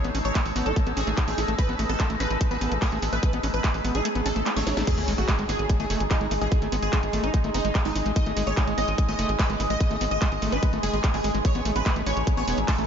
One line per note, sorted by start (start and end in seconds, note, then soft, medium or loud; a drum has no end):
0.00 4.86 G#3 medium
0.00 4.86 D#4 medium
0.00 0.12 C#5 loud
0.00 4.87 A5 medium
0.00 4.87 E6 medium
0.04 0.11 A1 medium
0.04 0.10 B3 loud
0.04 closed hi-hat soft
0.15 0.21 A1 loud
0.15 0.19 C#4 medium
0.15 open hi-hat loud
0.25 0.32 A1 loud
0.25 0.53 C#5 loud
0.25 closed hi-hat soft
0.35 0.41 A3 medium
0.35 kick loud
0.35 clap loud
0.35 closed hi-hat medium
0.46 0.52 A1 medium
0.46 open hi-hat medium
0.56 0.63 A1 loud
0.56 0.68 B3 medium
0.56 open hi-hat loud
0.66 0.73 A1 medium
0.66 0.72 E4 medium
0.66 0.87 A4 loud
0.66 closed hi-hat soft
0.76 0.80 A3 loud
0.76 kick loud
0.76 closed hi-hat medium
0.87 0.93 A1 medium
0.87 0.93 B3 loud
0.87 closed hi-hat soft
0.97 1.04 A1 loud
0.97 1.01 C#4 medium
0.97 1.18 G#4 loud
0.97 open hi-hat loud
1.07 1.14 A1 loud
1.07 1.11 A3 loud
1.07 closed hi-hat soft
1.17 1.21 A3 medium
1.17 kick loud
1.17 clap loud
1.17 closed hi-hat medium
1.28 1.34 A1 medium
1.28 1.30 A3 loud
1.28 1.49 G#4 loud
1.28 clap soft
1.28 closed hi-hat soft
1.38 1.45 A1 medium
1.38 1.40 E4 loud
1.38 open hi-hat loud
1.48 1.55 A1 medium
1.48 1.54 A3 medium
1.48 closed hi-hat soft
1.58 1.61 A3 medium
1.58 1.79 B4 loud
1.58 kick loud
1.58 closed hi-hat loud
1.69 1.76 A1 medium
1.69 1.75 B3 loud
1.69 closed hi-hat soft
1.79 1.86 A1 loud
1.79 1.85 A3 medium
1.79 open hi-hat loud
1.89 1.96 A1 loud
1.89 1.93 B3 medium
1.89 2.10 A4 loud
1.89 closed hi-hat soft
2.00 2.06 A3 medium
2.00 kick loud
2.00 clap loud
2.00 closed hi-hat medium
2.10 2.17 A1 medium
2.10 2.16 A3 loud
2.10 closed hi-hat soft
2.20 2.27 A1 loud
2.20 2.23 C#4 medium
2.20 2.41 B4 loud
2.20 open hi-hat medium
2.30 2.37 A1 medium
2.30 closed hi-hat soft
2.41 kick loud
2.41 closed hi-hat loud
2.51 2.58 A1 medium
2.51 2.57 B3 loud
2.51 2.72 B4 loud
2.51 closed hi-hat soft
2.61 2.68 A1 loud
2.61 2.73 B3 medium
2.61 open hi-hat loud
2.72 2.78 A1 medium
2.72 2.74 A3 medium
2.72 closed hi-hat soft
2.82 2.88 A3 medium
2.82 3.03 G#4 loud
2.82 kick loud
2.82 clap loud
2.82 closed hi-hat loud
2.92 2.99 A1 medium
2.92 2.98 A3 loud
2.92 closed hi-hat soft
3.02 3.09 A1 loud
3.02 3.05 B3 medium
3.02 open hi-hat loud
3.13 3.19 A1 medium
3.13 3.17 A3 medium
3.13 3.40 B4 loud
3.13 closed hi-hat soft
3.23 kick loud
3.23 closed hi-hat loud
3.33 3.40 A1 medium
3.33 3.39 B3 loud
3.33 closed hi-hat soft
3.43 3.50 A1 loud
3.43 3.47 C#4 medium
3.43 open hi-hat loud
3.54 3.61 A1 medium
3.54 3.82 B4 loud
3.54 closed hi-hat soft
3.64 3.70 A3 medium
3.64 kick loud
3.64 clap loud
3.64 closed hi-hat loud
3.74 3.81 A1 medium
3.74 open hi-hat medium
3.85 3.91 A1 loud
3.85 3.96 B3 medium
3.85 open hi-hat loud
3.95 4.02 A1 medium
3.95 4.01 E4 medium
3.95 4.16 G#4 loud
3.95 closed hi-hat soft
4.05 4.09 A3 loud
4.05 closed hi-hat loud
4.15 4.22 A1 medium
4.15 4.21 B3 loud
4.15 closed hi-hat soft
4.26 4.32 A1 loud
4.26 4.30 C#4 medium
4.26 4.46 A4 medium
4.26 open hi-hat loud
4.36 4.43 A1 medium
4.36 4.40 A3 loud
4.36 closed hi-hat soft
4.46 4.50 A3 medium
4.46 clap loud
4.46 closed hi-hat loud
4.56 4.63 A1 medium
4.56 4.59 A3 loud
4.56 4.77 C#5 loud
4.56 snare medium
4.56 closed hi-hat soft
4.67 4.74 A1 medium
4.67 4.69 E4 loud
4.67 snare medium
4.67 open hi-hat loud
4.77 4.84 A1 medium
4.77 4.83 A3 medium
4.77 snare medium
4.77 closed hi-hat soft
4.87 4.90 G#3 medium
4.87 12.87 G#3 medium
4.87 12.87 D#4 medium
4.87 5.08 G#4 loud
4.87 11.45 G#4 medium
4.87 kick loud
4.87 closed hi-hat loud
4.87 crash loud
4.87 sub drop medium
4.98 5.04 G#1 medium
4.98 5.04 A3 loud
4.98 closed hi-hat soft
5.08 5.15 G#1 loud
5.08 5.14 G#3 medium
5.08 open hi-hat loud
5.18 5.25 G#1 medium
5.18 5.22 A3 medium
5.18 5.39 F#4 loud
5.18 closed hi-hat soft
5.28 5.34 G#3 medium
5.28 kick loud
5.28 clap loud
5.28 closed hi-hat loud
5.39 5.45 G#1 medium
5.39 5.45 G#3 loud
5.39 11.45 D#5 medium
5.39 closed hi-hat soft
5.49 5.56 G#1 loud
5.49 5.51 B3 medium
5.49 5.70 G#4 loud
5.49 open hi-hat loud
5.59 5.66 G#1 medium
5.59 closed hi-hat soft
5.70 kick loud
5.70 closed hi-hat loud
5.80 5.87 G#1 medium
5.80 5.86 A3 loud
5.80 6.01 G#4 loud
5.80 closed hi-hat soft
5.90 5.97 F#1 loud
5.90 6.02 A3 medium
5.90 open hi-hat loud
6.00 6.07 G#1 medium
6.00 6.03 G#3 medium
6.00 closed hi-hat soft
6.11 6.17 G#3 medium
6.11 6.31 D#4 loud
6.11 kick loud
6.11 clap loud
6.11 closed hi-hat loud
6.21 6.28 G#1 medium
6.21 6.27 G#3 loud
6.21 closed hi-hat soft
6.31 6.38 G#1 loud
6.31 6.34 A3 medium
6.31 open hi-hat loud
6.35 11.45 G#5 medium
6.41 6.48 A1 medium
6.41 6.45 G#3 medium
6.41 6.69 G#4 loud
6.41 closed hi-hat soft
6.52 kick loud
6.52 closed hi-hat loud
6.62 6.69 G#1 medium
6.62 6.68 A3 loud
6.62 closed hi-hat soft
6.72 6.79 G#1 loud
6.72 6.76 B3 medium
6.72 open hi-hat loud
6.83 6.89 G#1 loud
6.83 7.10 G#4 loud
6.83 closed hi-hat soft
6.93 6.99 G#3 medium
6.93 kick loud
6.93 clap loud
6.93 closed hi-hat medium
7.03 7.10 G#1 medium
7.03 closed hi-hat soft
7.13 7.20 G#1 loud
7.13 7.25 A3 medium
7.13 open hi-hat loud
7.24 7.30 G#1 medium
7.24 7.30 D#4 medium
7.24 7.44 D#4 loud
7.24 closed hi-hat soft
7.34 7.38 G#3 loud
7.34 kick loud
7.34 closed hi-hat loud
7.44 7.51 G#1 medium
7.44 7.50 A3 loud
7.44 closed hi-hat soft
7.54 7.61 F#1 loud
7.54 7.58 B3 medium
7.54 7.75 D#4 loud
7.54 open hi-hat loud
7.65 7.71 G#1 medium
7.65 7.69 G#3 loud
7.65 closed hi-hat soft
7.75 7.79 G#3 medium
7.75 kick loud
7.75 clap loud
7.75 closed hi-hat medium
7.85 7.92 G#1 medium
7.85 7.88 G#3 loud
7.85 8.06 D#4 loud
7.85 clap soft
7.85 closed hi-hat soft
7.96 8.02 G#1 loud
7.96 7.98 D#4 loud
7.96 open hi-hat loud
8.06 8.13 A1 medium
8.06 8.12 G#3 medium
8.06 closed hi-hat soft
8.16 8.18 G#3 medium
8.16 8.37 D#5 loud
8.16 kick loud
8.16 closed hi-hat medium
8.26 8.33 G#1 medium
8.26 8.32 A3 loud
8.26 closed hi-hat soft
8.37 8.43 G#1 loud
8.37 8.43 G#3 medium
8.37 open hi-hat loud
8.47 8.54 G#1 loud
8.47 8.51 A3 medium
8.47 8.68 C#5 loud
8.47 closed hi-hat soft
8.57 8.63 G#3 medium
8.57 kick loud
8.57 clap loud
8.57 closed hi-hat medium
8.67 8.74 G#1 medium
8.67 8.73 G#3 loud
8.67 closed hi-hat soft
8.78 8.84 G#1 loud
8.78 8.80 B3 medium
8.78 8.99 D#5 loud
8.78 open hi-hat loud
8.88 8.95 G#1 medium
8.88 closed hi-hat soft
8.98 kick loud
8.98 closed hi-hat loud
9.09 9.15 G#1 medium
9.09 9.14 A3 loud
9.09 9.29 D#5 loud
9.09 closed hi-hat soft
9.19 9.26 F#1 loud
9.19 9.31 A3 medium
9.19 open hi-hat loud
9.29 9.36 G#1 loud
9.29 9.31 G#3 medium
9.29 closed hi-hat soft
9.39 9.45 G#3 medium
9.39 9.60 B4 loud
9.39 kick loud
9.39 clap loud
9.39 closed hi-hat medium
9.50 9.56 G#1 medium
9.50 9.56 G#3 loud
9.50 closed hi-hat soft
9.60 9.67 G#1 loud
9.60 9.62 A3 medium
9.60 open hi-hat loud
9.70 9.77 A1 medium
9.70 9.74 G#3 medium
9.70 9.98 D#5 loud
9.70 closed hi-hat soft
9.80 kick loud
9.80 closed hi-hat medium
9.91 9.97 G#1 medium
9.91 9.97 A3 loud
9.91 closed hi-hat soft
10.01 10.08 G#1 loud
10.01 10.05 B3 medium
10.01 open hi-hat loud
10.11 10.18 G#1 medium
10.11 10.39 D#5 loud
10.11 closed hi-hat soft
10.22 10.27 G#3 medium
10.22 kick loud
10.22 clap loud
10.22 closed hi-hat medium
10.32 10.39 G#1 medium
10.32 closed hi-hat soft
10.42 10.49 G#1 loud
10.42 10.54 A3 medium
10.42 open hi-hat loud
10.52 10.59 G#1 medium
10.52 10.58 D#4 medium
10.52 10.73 B4 loud
10.52 closed hi-hat soft
10.63 10.67 G#3 loud
10.63 kick loud
10.63 closed hi-hat medium
10.73 10.80 G#1 medium
10.73 10.79 A3 loud
10.73 closed hi-hat soft
10.83 10.90 F#1 loud
10.83 10.86 G#3 medium
10.83 11.04 G#4 loud
10.83 open hi-hat loud
10.93 11.00 G#1 medium
10.93 10.96 G#3 medium
10.93 closed hi-hat soft
11.04 11.08 G#3 medium
11.04 kick loud
11.04 clap loud
11.04 closed hi-hat medium
11.14 11.21 G#1 medium
11.14 11.16 G#3 loud
11.14 11.35 G#4 loud
11.14 clap soft
11.14 closed hi-hat soft
11.24 11.31 G#1 loud
11.24 11.30 G#3 medium
11.24 open hi-hat loud
11.35 11.41 G#1 medium
11.35 11.39 G#3 loud
11.35 closed hi-hat soft
11.45 11.47 A3 medium
11.45 11.66 C#5 loud
11.45 kick loud
11.45 closed hi-hat medium
11.55 11.62 A1 medium
11.55 11.61 B3 loud
11.55 closed hi-hat soft
11.65 11.72 A1 loud
11.65 11.71 A3 medium
11.65 open hi-hat loud
11.76 11.82 A1 loud
11.76 11.80 B3 medium
11.76 11.97 B4 loud
11.76 closed hi-hat soft
11.86 11.92 A3 medium
11.86 kick loud
11.86 clap loud
11.86 closed hi-hat medium
11.96 12.03 A1 medium
11.96 12.02 A3 loud
11.96 closed hi-hat soft
12.06 12.13 A1 loud
12.06 12.09 C#4 medium
12.06 12.27 C#5 loud
12.06 open hi-hat loud
12.17 12.24 A1 medium
12.17 closed hi-hat soft
12.25 12.87 E6 medium
12.25 kick loud
12.25 closed hi-hat medium
12.37 12.44 A1 medium
12.37 12.43 B3 loud
12.37 12.58 C#5 loud
12.37 closed hi-hat soft
12.47 12.54 E1 loud
12.47 12.59 B3 medium
12.47 12.87 A5 medium
12.47 open hi-hat loud
12.58 12.65 A1 medium
12.58 12.60 A3 medium
12.58 closed hi-hat soft
12.68 12.74 A3 medium
12.68 12.87 A4 loud
12.68 kick loud
12.68 clap loud
12.68 closed hi-hat medium
12.78 12.85 A1 medium
12.78 12.84 A3 loud
12.78 closed hi-hat soft